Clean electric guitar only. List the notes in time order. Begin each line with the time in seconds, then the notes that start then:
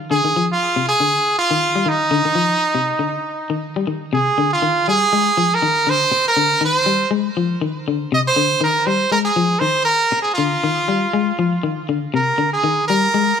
0.11 D3
0.24 D#3
0.36 F3
0.76 C3
1.00 D3
1.51 D#3
1.75 G3
1.86 D#3
2.11 D3
2.25 D#3
2.35 F3
2.75 C3
2.99 D3
3.50 D#3
3.76 G3
3.87 D#3
4.13 C3
4.38 D3
4.62 D#3
4.88 G3
5.13 G#3
5.37 F3
5.62 D#3
5.87 D3
6.12 muted clean electric guitar stroke
6.37 D3
6.61 D#3
6.86 G3
7.11 G#3
7.37 F3
7.61 D#3
7.88 D3
8.12 C3
8.36 D3
8.61 D#3
8.87 G3
9.12 G#3
9.36 F3
9.61 D#3
10.12 muted clean electric guitar stroke
10.38 D3
10.64 D#3
10.88 G3
11.13 G#3
11.39 F3
11.63 D#3
11.89 D3
12.14 C3
12.38 D3
12.64 D#3
12.90 G3
13.14 G#3